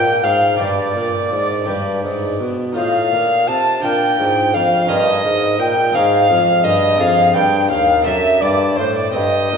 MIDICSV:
0, 0, Header, 1, 5, 480
1, 0, Start_track
1, 0, Tempo, 720288
1, 399, Time_signature, 6, 3, 24, 8
1, 2321, Tempo, 704225
1, 5201, Tempo, 724638
1, 6437, End_track
2, 0, Start_track
2, 0, Title_t, "Flute"
2, 0, Program_c, 0, 73
2, 0, Note_on_c, 0, 79, 106
2, 158, Note_on_c, 0, 77, 90
2, 168, Note_off_c, 0, 79, 0
2, 404, Note_on_c, 0, 74, 80
2, 414, Note_off_c, 0, 77, 0
2, 1606, Note_off_c, 0, 74, 0
2, 1842, Note_on_c, 0, 77, 87
2, 2317, Note_on_c, 0, 81, 89
2, 2327, Note_off_c, 0, 77, 0
2, 2562, Note_off_c, 0, 81, 0
2, 2566, Note_on_c, 0, 79, 90
2, 3042, Note_on_c, 0, 77, 87
2, 3052, Note_off_c, 0, 79, 0
2, 3274, Note_off_c, 0, 77, 0
2, 3278, Note_on_c, 0, 75, 86
2, 3750, Note_off_c, 0, 75, 0
2, 3760, Note_on_c, 0, 79, 92
2, 3989, Note_off_c, 0, 79, 0
2, 3993, Note_on_c, 0, 77, 101
2, 4473, Note_on_c, 0, 75, 94
2, 4483, Note_off_c, 0, 77, 0
2, 4716, Note_on_c, 0, 77, 99
2, 4726, Note_off_c, 0, 75, 0
2, 4953, Note_on_c, 0, 79, 91
2, 4963, Note_off_c, 0, 77, 0
2, 5193, Note_on_c, 0, 77, 98
2, 5203, Note_off_c, 0, 79, 0
2, 5424, Note_off_c, 0, 77, 0
2, 5428, Note_on_c, 0, 76, 99
2, 5667, Note_on_c, 0, 74, 90
2, 5677, Note_off_c, 0, 76, 0
2, 5903, Note_on_c, 0, 72, 82
2, 5913, Note_off_c, 0, 74, 0
2, 6031, Note_off_c, 0, 72, 0
2, 6036, Note_on_c, 0, 74, 72
2, 6076, Note_off_c, 0, 74, 0
2, 6146, Note_on_c, 0, 75, 82
2, 6437, Note_off_c, 0, 75, 0
2, 6437, End_track
3, 0, Start_track
3, 0, Title_t, "Violin"
3, 0, Program_c, 1, 40
3, 0, Note_on_c, 1, 79, 86
3, 158, Note_on_c, 1, 77, 75
3, 168, Note_off_c, 1, 79, 0
3, 397, Note_off_c, 1, 77, 0
3, 401, Note_on_c, 1, 74, 76
3, 1580, Note_off_c, 1, 74, 0
3, 1842, Note_on_c, 1, 77, 72
3, 2319, Note_on_c, 1, 81, 74
3, 2329, Note_off_c, 1, 77, 0
3, 2558, Note_off_c, 1, 81, 0
3, 2562, Note_on_c, 1, 79, 76
3, 3043, Note_on_c, 1, 77, 70
3, 3053, Note_off_c, 1, 79, 0
3, 3281, Note_on_c, 1, 75, 81
3, 3291, Note_off_c, 1, 77, 0
3, 3759, Note_on_c, 1, 79, 84
3, 3769, Note_off_c, 1, 75, 0
3, 3999, Note_on_c, 1, 77, 83
3, 4010, Note_off_c, 1, 79, 0
3, 4476, Note_on_c, 1, 75, 81
3, 4486, Note_off_c, 1, 77, 0
3, 4721, Note_on_c, 1, 77, 82
3, 4731, Note_off_c, 1, 75, 0
3, 4961, Note_off_c, 1, 77, 0
3, 4964, Note_on_c, 1, 79, 83
3, 5198, Note_off_c, 1, 79, 0
3, 5202, Note_on_c, 1, 77, 81
3, 5432, Note_off_c, 1, 77, 0
3, 5435, Note_on_c, 1, 76, 87
3, 5674, Note_on_c, 1, 74, 76
3, 5684, Note_off_c, 1, 76, 0
3, 5907, Note_off_c, 1, 74, 0
3, 5911, Note_on_c, 1, 72, 69
3, 6027, Note_off_c, 1, 72, 0
3, 6031, Note_on_c, 1, 74, 68
3, 6151, Note_off_c, 1, 74, 0
3, 6155, Note_on_c, 1, 75, 73
3, 6437, Note_off_c, 1, 75, 0
3, 6437, End_track
4, 0, Start_track
4, 0, Title_t, "Harpsichord"
4, 0, Program_c, 2, 6
4, 0, Note_on_c, 2, 46, 55
4, 0, Note_on_c, 2, 60, 58
4, 0, Note_on_c, 2, 65, 59
4, 0, Note_on_c, 2, 72, 54
4, 136, Note_off_c, 2, 46, 0
4, 162, Note_on_c, 2, 44, 57
4, 363, Note_off_c, 2, 60, 0
4, 368, Note_off_c, 2, 65, 0
4, 373, Note_off_c, 2, 72, 0
4, 374, Note_on_c, 2, 62, 48
4, 377, Note_off_c, 2, 44, 0
4, 384, Note_on_c, 2, 67, 48
4, 392, Note_on_c, 2, 72, 45
4, 402, Note_on_c, 2, 43, 51
4, 617, Note_off_c, 2, 43, 0
4, 647, Note_on_c, 2, 46, 51
4, 860, Note_off_c, 2, 46, 0
4, 880, Note_on_c, 2, 44, 52
4, 1084, Note_off_c, 2, 62, 0
4, 1091, Note_off_c, 2, 67, 0
4, 1092, Note_on_c, 2, 62, 46
4, 1095, Note_off_c, 2, 72, 0
4, 1096, Note_off_c, 2, 44, 0
4, 1102, Note_on_c, 2, 67, 44
4, 1113, Note_on_c, 2, 71, 46
4, 1122, Note_on_c, 2, 43, 51
4, 1338, Note_off_c, 2, 43, 0
4, 1364, Note_on_c, 2, 44, 47
4, 1580, Note_off_c, 2, 44, 0
4, 1603, Note_on_c, 2, 47, 50
4, 1807, Note_off_c, 2, 62, 0
4, 1813, Note_off_c, 2, 67, 0
4, 1816, Note_on_c, 2, 63, 45
4, 1818, Note_off_c, 2, 71, 0
4, 1819, Note_off_c, 2, 47, 0
4, 1825, Note_on_c, 2, 65, 44
4, 1836, Note_on_c, 2, 72, 45
4, 1846, Note_on_c, 2, 45, 47
4, 2060, Note_off_c, 2, 45, 0
4, 2083, Note_on_c, 2, 46, 52
4, 2299, Note_off_c, 2, 46, 0
4, 2325, Note_on_c, 2, 48, 53
4, 2530, Note_off_c, 2, 63, 0
4, 2535, Note_off_c, 2, 65, 0
4, 2537, Note_on_c, 2, 62, 50
4, 2541, Note_off_c, 2, 72, 0
4, 2544, Note_off_c, 2, 48, 0
4, 2548, Note_on_c, 2, 65, 49
4, 2559, Note_on_c, 2, 70, 48
4, 2568, Note_on_c, 2, 46, 54
4, 2784, Note_off_c, 2, 46, 0
4, 2813, Note_on_c, 2, 44, 52
4, 3025, Note_off_c, 2, 44, 0
4, 3049, Note_on_c, 2, 41, 54
4, 3247, Note_off_c, 2, 62, 0
4, 3253, Note_off_c, 2, 65, 0
4, 3255, Note_on_c, 2, 61, 48
4, 3258, Note_off_c, 2, 70, 0
4, 3262, Note_off_c, 2, 41, 0
4, 3265, Note_on_c, 2, 63, 46
4, 3277, Note_on_c, 2, 70, 48
4, 3285, Note_on_c, 2, 43, 53
4, 3499, Note_off_c, 2, 43, 0
4, 3501, Note_off_c, 2, 61, 0
4, 3524, Note_on_c, 2, 44, 57
4, 3740, Note_off_c, 2, 44, 0
4, 3767, Note_on_c, 2, 46, 63
4, 3970, Note_on_c, 2, 56, 70
4, 3972, Note_off_c, 2, 63, 0
4, 3978, Note_off_c, 2, 70, 0
4, 3978, Note_on_c, 2, 60, 55
4, 3981, Note_off_c, 2, 46, 0
4, 3991, Note_on_c, 2, 63, 55
4, 3999, Note_on_c, 2, 68, 56
4, 4009, Note_on_c, 2, 44, 60
4, 4217, Note_off_c, 2, 56, 0
4, 4221, Note_off_c, 2, 44, 0
4, 4222, Note_off_c, 2, 60, 0
4, 4228, Note_off_c, 2, 63, 0
4, 4244, Note_on_c, 2, 41, 59
4, 4458, Note_off_c, 2, 41, 0
4, 4483, Note_on_c, 2, 43, 65
4, 4688, Note_on_c, 2, 60, 54
4, 4697, Note_off_c, 2, 43, 0
4, 4697, Note_off_c, 2, 68, 0
4, 4698, Note_on_c, 2, 62, 53
4, 4707, Note_on_c, 2, 68, 55
4, 4717, Note_on_c, 2, 41, 58
4, 4934, Note_off_c, 2, 41, 0
4, 4936, Note_off_c, 2, 60, 0
4, 4958, Note_on_c, 2, 43, 64
4, 5175, Note_off_c, 2, 43, 0
4, 5197, Note_on_c, 2, 39, 63
4, 5398, Note_on_c, 2, 60, 57
4, 5402, Note_off_c, 2, 62, 0
4, 5409, Note_off_c, 2, 68, 0
4, 5410, Note_on_c, 2, 62, 55
4, 5411, Note_off_c, 2, 39, 0
4, 5420, Note_on_c, 2, 69, 56
4, 5430, Note_on_c, 2, 42, 64
4, 5647, Note_off_c, 2, 42, 0
4, 5648, Note_off_c, 2, 60, 0
4, 5667, Note_on_c, 2, 43, 52
4, 5887, Note_off_c, 2, 43, 0
4, 5914, Note_on_c, 2, 45, 59
4, 6123, Note_off_c, 2, 62, 0
4, 6126, Note_on_c, 2, 60, 48
4, 6128, Note_off_c, 2, 69, 0
4, 6133, Note_off_c, 2, 45, 0
4, 6138, Note_on_c, 2, 67, 45
4, 6147, Note_on_c, 2, 72, 44
4, 6156, Note_on_c, 2, 43, 53
4, 6375, Note_off_c, 2, 43, 0
4, 6377, Note_off_c, 2, 60, 0
4, 6399, Note_on_c, 2, 46, 53
4, 6437, Note_off_c, 2, 46, 0
4, 6437, Note_off_c, 2, 67, 0
4, 6437, Note_off_c, 2, 72, 0
4, 6437, End_track
5, 0, Start_track
5, 0, Title_t, "Bassoon"
5, 0, Program_c, 3, 70
5, 0, Note_on_c, 3, 46, 70
5, 155, Note_off_c, 3, 46, 0
5, 158, Note_on_c, 3, 44, 72
5, 394, Note_off_c, 3, 44, 0
5, 399, Note_on_c, 3, 43, 68
5, 632, Note_off_c, 3, 43, 0
5, 636, Note_on_c, 3, 46, 63
5, 873, Note_off_c, 3, 46, 0
5, 878, Note_on_c, 3, 44, 59
5, 1117, Note_on_c, 3, 43, 62
5, 1127, Note_off_c, 3, 44, 0
5, 1354, Note_off_c, 3, 43, 0
5, 1358, Note_on_c, 3, 44, 53
5, 1595, Note_off_c, 3, 44, 0
5, 1599, Note_on_c, 3, 47, 61
5, 1838, Note_on_c, 3, 45, 66
5, 1848, Note_off_c, 3, 47, 0
5, 2080, Note_on_c, 3, 46, 61
5, 2090, Note_off_c, 3, 45, 0
5, 2321, Note_on_c, 3, 48, 57
5, 2331, Note_off_c, 3, 46, 0
5, 2558, Note_off_c, 3, 48, 0
5, 2562, Note_on_c, 3, 46, 66
5, 2801, Note_off_c, 3, 46, 0
5, 2806, Note_on_c, 3, 44, 64
5, 3047, Note_on_c, 3, 41, 67
5, 3057, Note_off_c, 3, 44, 0
5, 3279, Note_off_c, 3, 41, 0
5, 3283, Note_on_c, 3, 43, 70
5, 3517, Note_off_c, 3, 43, 0
5, 3524, Note_on_c, 3, 44, 69
5, 3755, Note_off_c, 3, 44, 0
5, 3759, Note_on_c, 3, 46, 67
5, 3995, Note_off_c, 3, 46, 0
5, 3999, Note_on_c, 3, 44, 75
5, 4233, Note_off_c, 3, 44, 0
5, 4237, Note_on_c, 3, 41, 70
5, 4475, Note_on_c, 3, 43, 75
5, 4485, Note_off_c, 3, 41, 0
5, 4715, Note_off_c, 3, 43, 0
5, 4719, Note_on_c, 3, 41, 79
5, 4952, Note_off_c, 3, 41, 0
5, 4956, Note_on_c, 3, 43, 70
5, 5199, Note_on_c, 3, 39, 69
5, 5209, Note_off_c, 3, 43, 0
5, 5432, Note_off_c, 3, 39, 0
5, 5436, Note_on_c, 3, 42, 73
5, 5670, Note_off_c, 3, 42, 0
5, 5674, Note_on_c, 3, 43, 68
5, 5910, Note_off_c, 3, 43, 0
5, 5916, Note_on_c, 3, 45, 69
5, 6153, Note_off_c, 3, 45, 0
5, 6159, Note_on_c, 3, 43, 68
5, 6396, Note_off_c, 3, 43, 0
5, 6403, Note_on_c, 3, 46, 62
5, 6437, Note_off_c, 3, 46, 0
5, 6437, End_track
0, 0, End_of_file